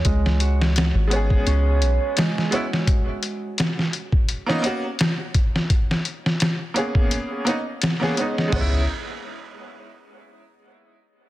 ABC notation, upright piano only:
X:1
M:4/4
L:1/16
Q:"Swing 16ths" 1/4=85
K:B
V:1 name="Upright piano"
z6 [G,B,CG]8 [G,B,CE] z | z8 z [A,B,CD] [A,B,CF] z4 z | z6 [A,B,CG]4 [A,B,CD] z2 [A,B,CG] [G,B,CD]2 | [G,B,CE]2 z12 z2 |]